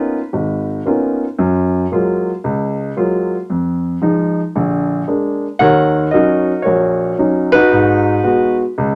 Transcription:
0, 0, Header, 1, 2, 480
1, 0, Start_track
1, 0, Tempo, 527241
1, 1258, Time_signature, 4, 2, 24, 8
1, 8149, End_track
2, 0, Start_track
2, 0, Title_t, "Grand piano"
2, 0, Program_c, 0, 0
2, 0, Note_on_c, 0, 58, 48
2, 0, Note_on_c, 0, 59, 40
2, 0, Note_on_c, 0, 61, 44
2, 0, Note_on_c, 0, 63, 45
2, 0, Note_on_c, 0, 65, 52
2, 0, Note_on_c, 0, 71, 79
2, 159, Note_off_c, 0, 58, 0
2, 159, Note_off_c, 0, 61, 0
2, 160, Note_off_c, 0, 59, 0
2, 161, Note_off_c, 0, 63, 0
2, 164, Note_off_c, 0, 65, 0
2, 302, Note_on_c, 0, 32, 55
2, 589, Note_off_c, 0, 71, 0
2, 718, Note_off_c, 0, 32, 0
2, 779, Note_on_c, 0, 58, 44
2, 785, Note_on_c, 0, 61, 42
2, 786, Note_on_c, 0, 59, 41
2, 789, Note_on_c, 0, 63, 38
2, 789, Note_on_c, 0, 65, 48
2, 1120, Note_off_c, 0, 58, 0
2, 1123, Note_off_c, 0, 59, 0
2, 1123, Note_off_c, 0, 61, 0
2, 1125, Note_off_c, 0, 63, 0
2, 1125, Note_off_c, 0, 65, 0
2, 1261, Note_on_c, 0, 42, 65
2, 1678, Note_off_c, 0, 42, 0
2, 1747, Note_on_c, 0, 54, 45
2, 1747, Note_on_c, 0, 56, 46
2, 1751, Note_on_c, 0, 58, 45
2, 1754, Note_on_c, 0, 65, 56
2, 2084, Note_off_c, 0, 54, 0
2, 2084, Note_off_c, 0, 56, 0
2, 2087, Note_off_c, 0, 58, 0
2, 2088, Note_off_c, 0, 65, 0
2, 2224, Note_on_c, 0, 37, 58
2, 2640, Note_off_c, 0, 37, 0
2, 2700, Note_on_c, 0, 54, 44
2, 2704, Note_on_c, 0, 58, 41
2, 2706, Note_on_c, 0, 56, 41
2, 2708, Note_on_c, 0, 65, 52
2, 3042, Note_off_c, 0, 54, 0
2, 3044, Note_off_c, 0, 56, 0
2, 3044, Note_off_c, 0, 58, 0
2, 3045, Note_off_c, 0, 65, 0
2, 3184, Note_on_c, 0, 41, 58
2, 3600, Note_off_c, 0, 41, 0
2, 3657, Note_on_c, 0, 53, 48
2, 3664, Note_on_c, 0, 56, 43
2, 3666, Note_on_c, 0, 63, 54
2, 4000, Note_off_c, 0, 53, 0
2, 4003, Note_off_c, 0, 56, 0
2, 4004, Note_off_c, 0, 63, 0
2, 4147, Note_on_c, 0, 50, 53
2, 4149, Note_on_c, 0, 34, 56
2, 4562, Note_off_c, 0, 50, 0
2, 4563, Note_off_c, 0, 34, 0
2, 4621, Note_on_c, 0, 56, 44
2, 4625, Note_on_c, 0, 58, 38
2, 4630, Note_on_c, 0, 62, 47
2, 4962, Note_off_c, 0, 56, 0
2, 4964, Note_off_c, 0, 58, 0
2, 4966, Note_off_c, 0, 62, 0
2, 5092, Note_on_c, 0, 78, 94
2, 5099, Note_on_c, 0, 51, 69
2, 5100, Note_on_c, 0, 39, 65
2, 5110, Note_on_c, 0, 70, 65
2, 5112, Note_on_c, 0, 73, 67
2, 5517, Note_off_c, 0, 39, 0
2, 5517, Note_off_c, 0, 51, 0
2, 5542, Note_off_c, 0, 78, 0
2, 5564, Note_on_c, 0, 75, 73
2, 5573, Note_off_c, 0, 70, 0
2, 5586, Note_on_c, 0, 54, 49
2, 5587, Note_on_c, 0, 70, 54
2, 5588, Note_on_c, 0, 66, 52
2, 5589, Note_on_c, 0, 61, 47
2, 5595, Note_on_c, 0, 63, 55
2, 5924, Note_off_c, 0, 54, 0
2, 5925, Note_off_c, 0, 61, 0
2, 5928, Note_off_c, 0, 63, 0
2, 6017, Note_off_c, 0, 73, 0
2, 6030, Note_on_c, 0, 73, 65
2, 6039, Note_off_c, 0, 70, 0
2, 6041, Note_off_c, 0, 66, 0
2, 6053, Note_on_c, 0, 70, 47
2, 6055, Note_on_c, 0, 66, 43
2, 6064, Note_on_c, 0, 34, 61
2, 6066, Note_off_c, 0, 75, 0
2, 6479, Note_off_c, 0, 34, 0
2, 6490, Note_off_c, 0, 73, 0
2, 6540, Note_on_c, 0, 54, 44
2, 6543, Note_on_c, 0, 61, 43
2, 6547, Note_on_c, 0, 63, 51
2, 6848, Note_on_c, 0, 71, 108
2, 6855, Note_off_c, 0, 63, 0
2, 6857, Note_off_c, 0, 66, 0
2, 6869, Note_on_c, 0, 63, 62
2, 6870, Note_on_c, 0, 66, 67
2, 6881, Note_off_c, 0, 54, 0
2, 6882, Note_off_c, 0, 61, 0
2, 6978, Note_off_c, 0, 70, 0
2, 7026, Note_on_c, 0, 44, 64
2, 7440, Note_off_c, 0, 44, 0
2, 7489, Note_off_c, 0, 66, 0
2, 7498, Note_on_c, 0, 56, 50
2, 7500, Note_on_c, 0, 59, 47
2, 7503, Note_on_c, 0, 66, 54
2, 7778, Note_off_c, 0, 71, 0
2, 7789, Note_off_c, 0, 63, 0
2, 7838, Note_off_c, 0, 56, 0
2, 7840, Note_off_c, 0, 59, 0
2, 7841, Note_off_c, 0, 66, 0
2, 7992, Note_on_c, 0, 37, 63
2, 8149, Note_off_c, 0, 37, 0
2, 8149, End_track
0, 0, End_of_file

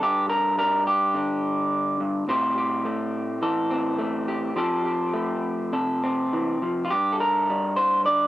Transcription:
0, 0, Header, 1, 2, 480
1, 0, Start_track
1, 0, Tempo, 567644
1, 17, Time_signature, 4, 2, 24, 8
1, 3377, Tempo, 582524
1, 6903, End_track
2, 0, Start_track
2, 0, Title_t, "Clean electric guitar"
2, 0, Program_c, 0, 27
2, 0, Note_on_c, 0, 55, 59
2, 0, Note_on_c, 0, 69, 81
2, 18, Note_on_c, 0, 43, 70
2, 25, Note_on_c, 0, 67, 96
2, 246, Note_off_c, 0, 67, 0
2, 249, Note_on_c, 0, 70, 82
2, 486, Note_off_c, 0, 55, 0
2, 486, Note_off_c, 0, 70, 0
2, 489, Note_on_c, 0, 55, 62
2, 494, Note_off_c, 0, 69, 0
2, 496, Note_on_c, 0, 70, 92
2, 731, Note_off_c, 0, 70, 0
2, 735, Note_on_c, 0, 67, 79
2, 963, Note_on_c, 0, 50, 54
2, 973, Note_on_c, 0, 62, 43
2, 1683, Note_off_c, 0, 43, 0
2, 1693, Note_on_c, 0, 43, 57
2, 1922, Note_off_c, 0, 43, 0
2, 1925, Note_on_c, 0, 45, 70
2, 1926, Note_off_c, 0, 67, 0
2, 1928, Note_off_c, 0, 50, 0
2, 1933, Note_off_c, 0, 62, 0
2, 1933, Note_on_c, 0, 60, 60
2, 1937, Note_on_c, 0, 67, 61
2, 1943, Note_on_c, 0, 72, 70
2, 2177, Note_off_c, 0, 67, 0
2, 2180, Note_on_c, 0, 67, 52
2, 2406, Note_off_c, 0, 55, 0
2, 2410, Note_on_c, 0, 57, 63
2, 2892, Note_on_c, 0, 52, 57
2, 2894, Note_off_c, 0, 72, 0
2, 2897, Note_on_c, 0, 69, 55
2, 3124, Note_off_c, 0, 60, 0
2, 3134, Note_on_c, 0, 60, 56
2, 3360, Note_off_c, 0, 57, 0
2, 3371, Note_on_c, 0, 57, 61
2, 3612, Note_off_c, 0, 67, 0
2, 3615, Note_on_c, 0, 67, 59
2, 3819, Note_off_c, 0, 45, 0
2, 3819, Note_off_c, 0, 57, 0
2, 3821, Note_off_c, 0, 52, 0
2, 3823, Note_off_c, 0, 69, 0
2, 3838, Note_off_c, 0, 60, 0
2, 3844, Note_on_c, 0, 53, 65
2, 3848, Note_on_c, 0, 60, 53
2, 3851, Note_off_c, 0, 67, 0
2, 3854, Note_on_c, 0, 67, 57
2, 3861, Note_on_c, 0, 69, 59
2, 4074, Note_off_c, 0, 67, 0
2, 4084, Note_on_c, 0, 67, 50
2, 4318, Note_on_c, 0, 57, 62
2, 4799, Note_off_c, 0, 69, 0
2, 4805, Note_on_c, 0, 48, 51
2, 4809, Note_on_c, 0, 69, 56
2, 5049, Note_off_c, 0, 60, 0
2, 5058, Note_on_c, 0, 60, 54
2, 5293, Note_off_c, 0, 53, 0
2, 5302, Note_on_c, 0, 52, 53
2, 5540, Note_off_c, 0, 52, 0
2, 5543, Note_on_c, 0, 53, 59
2, 5725, Note_off_c, 0, 67, 0
2, 5728, Note_on_c, 0, 65, 67
2, 5752, Note_off_c, 0, 57, 0
2, 5755, Note_off_c, 0, 48, 0
2, 5757, Note_off_c, 0, 69, 0
2, 5776, Note_on_c, 0, 67, 79
2, 5782, Note_on_c, 0, 43, 60
2, 5784, Note_off_c, 0, 53, 0
2, 5785, Note_off_c, 0, 65, 0
2, 5788, Note_off_c, 0, 60, 0
2, 5958, Note_on_c, 0, 69, 56
2, 6019, Note_off_c, 0, 67, 0
2, 6022, Note_on_c, 0, 70, 73
2, 6265, Note_on_c, 0, 55, 50
2, 6481, Note_off_c, 0, 70, 0
2, 6484, Note_on_c, 0, 72, 81
2, 6498, Note_off_c, 0, 69, 0
2, 6722, Note_off_c, 0, 72, 0
2, 6725, Note_on_c, 0, 74, 79
2, 6736, Note_on_c, 0, 50, 50
2, 6903, Note_off_c, 0, 43, 0
2, 6903, Note_off_c, 0, 50, 0
2, 6903, Note_off_c, 0, 55, 0
2, 6903, Note_off_c, 0, 74, 0
2, 6903, End_track
0, 0, End_of_file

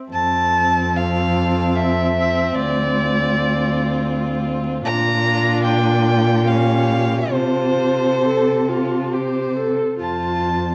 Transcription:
0, 0, Header, 1, 5, 480
1, 0, Start_track
1, 0, Key_signature, -1, "major"
1, 0, Tempo, 826446
1, 68, Time_signature, 3, 2, 24, 8
1, 1023, Tempo, 775194
1, 3423, Tempo, 841515
1, 4383, Tempo, 902256
1, 5343, Tempo, 842697
1, 6268, End_track
2, 0, Start_track
2, 0, Title_t, "Violin"
2, 0, Program_c, 0, 40
2, 72, Note_on_c, 0, 81, 114
2, 561, Note_on_c, 0, 77, 101
2, 570, Note_off_c, 0, 81, 0
2, 1022, Note_on_c, 0, 76, 114
2, 1031, Note_off_c, 0, 77, 0
2, 1513, Note_on_c, 0, 74, 114
2, 1523, Note_off_c, 0, 76, 0
2, 2698, Note_off_c, 0, 74, 0
2, 2935, Note_on_c, 0, 82, 127
2, 3399, Note_off_c, 0, 82, 0
2, 3424, Note_on_c, 0, 79, 110
2, 3896, Note_on_c, 0, 77, 99
2, 3905, Note_off_c, 0, 79, 0
2, 4385, Note_on_c, 0, 72, 107
2, 4393, Note_off_c, 0, 77, 0
2, 5344, Note_off_c, 0, 72, 0
2, 5841, Note_on_c, 0, 81, 92
2, 6268, Note_off_c, 0, 81, 0
2, 6268, End_track
3, 0, Start_track
3, 0, Title_t, "Violin"
3, 0, Program_c, 1, 40
3, 70, Note_on_c, 1, 69, 67
3, 1485, Note_off_c, 1, 69, 0
3, 1509, Note_on_c, 1, 65, 62
3, 2908, Note_off_c, 1, 65, 0
3, 2929, Note_on_c, 1, 65, 76
3, 3897, Note_on_c, 1, 67, 74
3, 3905, Note_off_c, 1, 65, 0
3, 4380, Note_on_c, 1, 69, 65
3, 4388, Note_off_c, 1, 67, 0
3, 5345, Note_on_c, 1, 72, 60
3, 5353, Note_off_c, 1, 69, 0
3, 5722, Note_off_c, 1, 72, 0
3, 5842, Note_on_c, 1, 72, 52
3, 6268, Note_off_c, 1, 72, 0
3, 6268, End_track
4, 0, Start_track
4, 0, Title_t, "Viola"
4, 0, Program_c, 2, 41
4, 69, Note_on_c, 2, 60, 72
4, 2909, Note_off_c, 2, 60, 0
4, 2940, Note_on_c, 2, 62, 76
4, 3875, Note_off_c, 2, 62, 0
4, 3899, Note_on_c, 2, 61, 72
4, 4375, Note_off_c, 2, 61, 0
4, 4383, Note_on_c, 2, 65, 62
4, 4809, Note_off_c, 2, 65, 0
4, 4867, Note_on_c, 2, 69, 64
4, 5107, Note_on_c, 2, 65, 68
4, 5115, Note_off_c, 2, 69, 0
4, 5343, Note_on_c, 2, 67, 62
4, 5352, Note_off_c, 2, 65, 0
4, 5594, Note_off_c, 2, 67, 0
4, 5597, Note_on_c, 2, 69, 61
4, 5831, Note_off_c, 2, 69, 0
4, 5834, Note_on_c, 2, 65, 59
4, 6268, Note_off_c, 2, 65, 0
4, 6268, End_track
5, 0, Start_track
5, 0, Title_t, "Cello"
5, 0, Program_c, 3, 42
5, 63, Note_on_c, 3, 41, 80
5, 1511, Note_on_c, 3, 38, 73
5, 1521, Note_off_c, 3, 41, 0
5, 2929, Note_off_c, 3, 38, 0
5, 2933, Note_on_c, 3, 46, 92
5, 4360, Note_off_c, 3, 46, 0
5, 4384, Note_on_c, 3, 48, 73
5, 5699, Note_off_c, 3, 48, 0
5, 5837, Note_on_c, 3, 41, 62
5, 6268, Note_off_c, 3, 41, 0
5, 6268, End_track
0, 0, End_of_file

